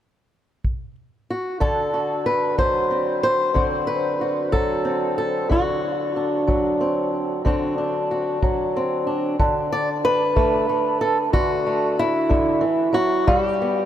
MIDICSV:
0, 0, Header, 1, 3, 480
1, 0, Start_track
1, 0, Tempo, 647948
1, 1195, Time_signature, 12, 3, 24, 8
1, 10262, End_track
2, 0, Start_track
2, 0, Title_t, "Steel-string acoustic guitar"
2, 0, Program_c, 0, 25
2, 966, Note_on_c, 0, 66, 66
2, 1188, Note_on_c, 0, 50, 75
2, 1189, Note_off_c, 0, 66, 0
2, 1192, Note_on_c, 0, 69, 72
2, 1435, Note_on_c, 0, 66, 42
2, 1671, Note_off_c, 0, 69, 0
2, 1674, Note_on_c, 0, 71, 82
2, 1912, Note_on_c, 0, 54, 54
2, 1913, Note_off_c, 0, 71, 0
2, 1916, Note_on_c, 0, 72, 86
2, 2153, Note_on_c, 0, 60, 34
2, 2387, Note_off_c, 0, 72, 0
2, 2395, Note_on_c, 0, 72, 84
2, 2621, Note_off_c, 0, 50, 0
2, 2624, Note_on_c, 0, 50, 64
2, 2628, Note_off_c, 0, 60, 0
2, 2631, Note_on_c, 0, 60, 42
2, 2634, Note_off_c, 0, 66, 0
2, 2637, Note_on_c, 0, 66, 45
2, 2864, Note_off_c, 0, 72, 0
2, 2867, Note_on_c, 0, 71, 78
2, 3116, Note_off_c, 0, 66, 0
2, 3119, Note_on_c, 0, 66, 40
2, 3348, Note_off_c, 0, 71, 0
2, 3350, Note_on_c, 0, 69, 75
2, 3352, Note_off_c, 0, 54, 0
2, 3355, Note_on_c, 0, 54, 53
2, 3588, Note_off_c, 0, 60, 0
2, 3591, Note_on_c, 0, 60, 38
2, 3827, Note_off_c, 0, 69, 0
2, 3836, Note_on_c, 0, 69, 73
2, 4068, Note_off_c, 0, 50, 0
2, 4071, Note_on_c, 0, 50, 74
2, 4077, Note_off_c, 0, 69, 0
2, 4087, Note_off_c, 0, 66, 0
2, 4087, Note_on_c, 0, 66, 63
2, 4093, Note_off_c, 0, 60, 0
2, 4565, Note_on_c, 0, 62, 38
2, 4793, Note_off_c, 0, 54, 0
2, 4796, Note_on_c, 0, 54, 53
2, 5043, Note_on_c, 0, 60, 41
2, 5508, Note_off_c, 0, 50, 0
2, 5514, Note_off_c, 0, 60, 0
2, 5517, Note_on_c, 0, 50, 61
2, 5518, Note_off_c, 0, 62, 0
2, 5523, Note_off_c, 0, 66, 0
2, 5523, Note_on_c, 0, 60, 39
2, 5527, Note_on_c, 0, 62, 43
2, 5533, Note_on_c, 0, 66, 39
2, 5754, Note_off_c, 0, 62, 0
2, 5763, Note_on_c, 0, 62, 39
2, 5999, Note_off_c, 0, 66, 0
2, 6007, Note_on_c, 0, 66, 42
2, 6231, Note_off_c, 0, 54, 0
2, 6240, Note_on_c, 0, 54, 51
2, 6481, Note_off_c, 0, 60, 0
2, 6493, Note_on_c, 0, 60, 44
2, 6709, Note_off_c, 0, 62, 0
2, 6718, Note_on_c, 0, 62, 43
2, 6930, Note_off_c, 0, 50, 0
2, 6930, Note_off_c, 0, 62, 0
2, 6931, Note_off_c, 0, 54, 0
2, 6938, Note_off_c, 0, 60, 0
2, 6960, Note_on_c, 0, 50, 80
2, 7201, Note_off_c, 0, 66, 0
2, 7204, Note_on_c, 0, 74, 93
2, 7323, Note_off_c, 0, 74, 0
2, 7442, Note_on_c, 0, 71, 92
2, 7676, Note_on_c, 0, 57, 60
2, 7913, Note_off_c, 0, 57, 0
2, 7922, Note_on_c, 0, 57, 42
2, 8153, Note_off_c, 0, 71, 0
2, 8156, Note_on_c, 0, 69, 79
2, 8275, Note_off_c, 0, 69, 0
2, 8385, Note_off_c, 0, 50, 0
2, 8394, Note_on_c, 0, 50, 72
2, 8396, Note_on_c, 0, 66, 80
2, 8633, Note_off_c, 0, 57, 0
2, 8642, Note_on_c, 0, 57, 42
2, 8880, Note_off_c, 0, 57, 0
2, 8885, Note_on_c, 0, 64, 91
2, 9099, Note_off_c, 0, 50, 0
2, 9107, Note_on_c, 0, 50, 55
2, 9340, Note_on_c, 0, 52, 63
2, 9352, Note_off_c, 0, 50, 0
2, 9356, Note_off_c, 0, 66, 0
2, 9573, Note_off_c, 0, 52, 0
2, 9576, Note_on_c, 0, 54, 58
2, 9587, Note_on_c, 0, 66, 89
2, 9826, Note_off_c, 0, 54, 0
2, 9832, Note_off_c, 0, 66, 0
2, 9834, Note_on_c, 0, 55, 79
2, 9834, Note_on_c, 0, 66, 75
2, 9840, Note_off_c, 0, 64, 0
2, 9982, Note_off_c, 0, 66, 0
2, 9982, Note_on_c, 0, 67, 75
2, 10087, Note_on_c, 0, 59, 42
2, 10262, Note_off_c, 0, 55, 0
2, 10262, Note_off_c, 0, 59, 0
2, 10262, Note_off_c, 0, 67, 0
2, 10262, End_track
3, 0, Start_track
3, 0, Title_t, "Drums"
3, 478, Note_on_c, 9, 36, 51
3, 552, Note_off_c, 9, 36, 0
3, 1196, Note_on_c, 9, 36, 53
3, 1270, Note_off_c, 9, 36, 0
3, 1916, Note_on_c, 9, 36, 55
3, 1990, Note_off_c, 9, 36, 0
3, 2639, Note_on_c, 9, 36, 56
3, 2713, Note_off_c, 9, 36, 0
3, 3359, Note_on_c, 9, 36, 57
3, 3433, Note_off_c, 9, 36, 0
3, 4082, Note_on_c, 9, 36, 54
3, 4156, Note_off_c, 9, 36, 0
3, 4804, Note_on_c, 9, 36, 56
3, 4879, Note_off_c, 9, 36, 0
3, 5526, Note_on_c, 9, 36, 54
3, 5601, Note_off_c, 9, 36, 0
3, 6242, Note_on_c, 9, 36, 57
3, 6317, Note_off_c, 9, 36, 0
3, 6960, Note_on_c, 9, 36, 63
3, 7034, Note_off_c, 9, 36, 0
3, 7680, Note_on_c, 9, 36, 62
3, 7755, Note_off_c, 9, 36, 0
3, 8399, Note_on_c, 9, 36, 59
3, 8473, Note_off_c, 9, 36, 0
3, 9119, Note_on_c, 9, 36, 63
3, 9193, Note_off_c, 9, 36, 0
3, 9837, Note_on_c, 9, 36, 65
3, 9911, Note_off_c, 9, 36, 0
3, 10262, End_track
0, 0, End_of_file